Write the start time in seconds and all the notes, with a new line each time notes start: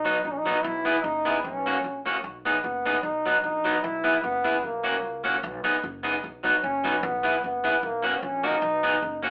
Already playing: B1 D#4
0.05 F#3 B3 D#4
0.25 A#1 D#4
0.32 C#4
0.38 D#4
0.46 F#3 B3 D#4
0.64 B1 E4
0.85 B3 E4 G#4
1.03 F#1 D#4
1.25 B3 E4 G#4
1.44 B1 C#4
1.66 A#3 C#4 F#4
1.84 A#1
2.06 A#3 C#4 F#4
2.24 B1
2.45 B3 D#4 G#4
2.62 F#1 B3
2.86 B3 D#4 G#4
3.02 B1 D#4
3.26 F#3 B3 D#4
3.43 A#1 D#4
3.64 F#3 B3 D#4
3.83 B1 E4
4.04 B3 E4 G#4
4.24 F#1 B3
4.44 B3 E4 G#4
4.63 B1 A#3
4.84 A#3 C#4 F#4
5.03 C#2
5.24 A#3 C#4 F#4
5.43 B1
5.64 A#1 B3 D#4 G#4
5.84 F#1
6.03 B3 D#4 G#4
6.24 B1
6.43 F#3 B3 D#4
6.63 F#1 C#4
6.84 F#3 B3 D#4
7.03 B1 B3
7.23 B3 E4 G#4
7.44 F#1 B3
7.64 B3 E4 G#4
7.83 B1 A#3
8.03 A#3 B3 C#4 F#4
8.23 A#1 C#4
8.43 A#3 C#4 D#4 F#4
8.62 B1
8.83 B3 D#4 G#4
9.02 F#1
9.23 A#3 C#4 F#4